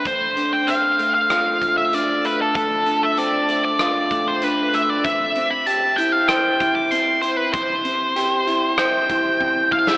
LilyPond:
<<
  \new Staff \with { instrumentName = "Lead electric guitar" } { \time 4/4 \key d \dorian \tempo 4 = 96 c''8. g''16 f''8. f''4 e''16 d''8 b'16 a'16 | a'8. e''16 d''8. d''4 c''16 b'8 e''16 d''16 | e''8. b''16 a''8 g''16 f''16 g''8. d'''16 c'''8 c''16 b'16 | c''2 g''4. f''16 e''16 | }
  \new Staff \with { instrumentName = "Clean electric guitar" } { \time 4/4 \key d \dorian d,8 d8 c'8 a8 f'8 a8 d8 a8 | d,8 d8 c'8 a8 f'8 a8 d8 a8 | c8 c'8 g'8 e'8 c''8 e'8 c'8 e'8 | c8 c'8 g'8 e'8 c''8 e'8 c'8 e'8 | }
  \new DrumStaff \with { instrumentName = "Drums" } \drummode { \time 4/4 <hh bd>8 hh8 hh8 hh8 <hh ss>8 <hh bd>8 hh8 hh8 | <hh bd>8 hh8 hh8 hh8 <hh ss>8 <hh bd>8 hh8 hh8 | <hh bd>8 hh8 hh8 hh8 <hh ss>8 <hh bd>8 hh8 hh8 | <hh bd>8 hh8 hh8 hh8 <hh ss>8 <hh bd>8 bd8 bd16 sn16 | }
>>